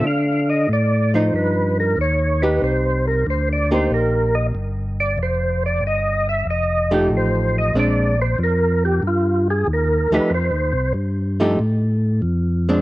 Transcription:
X:1
M:4/4
L:1/8
Q:"Swing" 1/4=94
K:Fmix
V:1 name="Tonewheel organ"
f e d c _c B _d c | c B (3c d c B e z d | c d e =e _e G c e | d c B G F _A B _c |
c2 z6 |]
V:2 name="Hollow-body jazz guitar"
z3 [F,E]3 z [EG]- | [EG]2 z [B,EG]3 z2 | z4 z [F,A,EG]3 | [_A,CD] z6 [F,=A,EG] |
z3 [F,A,EG] z3 [_A,CD] |]
V:3 name="Tonewheel organ" clef=bass
D,2 A,,2 G,,2 E,,2 | C,,2 D,,2 B,,,2 G,,,2 | F,,,2 G,,,2 F,,,2 A,,,2 | B,,,2 F,,2 G,,2 E,, E,, |
(3F,, E,, C,, G,,2 A,,2 F,,2 |]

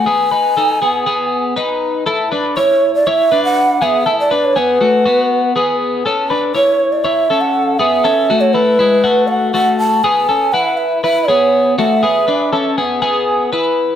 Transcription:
X:1
M:4/4
L:1/16
Q:1/4=120
K:Alyd
V:1 name="Shakuhachi"
g12 z4 | [K:Bdor] z4 c3 d e3 f3 e2- | e d2 c B8- B2 z2 | z4 c3 d e3 f3 e2- |
e3 c B6 f2 f2 a2 | g4 f2 e2 e2 c4 e2- | e6 z8 z2 |]
V:2 name="Clean electric guitar"
[B,G]2 [DB]2 [DA]2 [B,G]2 [B,G]4 [DB]4 | [K:Bdor] [EA]2 [DB]2 [Ec]4 [Ec]2 [DB]4 [B,G]2 | [EA]2 [DB]2 [B,G]2 [A,F]2 [B,F]4 [B,G]4 | [CA]2 [DB]2 [Ec]4 [Ec]2 [CA]4 [B,G]2 |
[CA]2 [A,F]2 [A,E]2 [G,E]2 [A,F]4 [A,F]4 | [B,G]2 [CA]2 [EB]4 [EB]2 [B,G]4 [A,F]2 | [B,G]2 [DB]2 [CA]2 [B,G]2 [B,G]4 [EB]4 |]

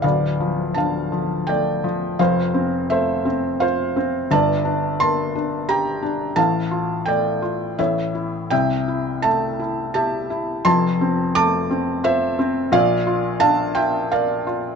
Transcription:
X:1
M:3/4
L:1/8
Q:1/4=85
K:Dm
V:1 name="Felt piano"
[df]2 [fa]2 [dg]2 | [cf]2 [ce]2 [cf]2 | [da]2 [ac']2 [gb]2 | [fa]2 [dg]2 [^ce]2 |
[eg]2 [ea]2 [ea]2 | [ac']2 [ad']2 [ce]2 | [df]2 [fa] [eg] [df]2 |]
V:2 name="Felt piano"
[D,,,D,,] F, D, F, A, F, | [F,,,F,,] C A, C F C | [G,,,G,,] D B, D G D | [A,,,A,,] F A, F [A,,,A,,] E |
[C,,C,] E A, E G E | [F,,,F,,] C A, C F C | [B,,,B,,] F D F B F |]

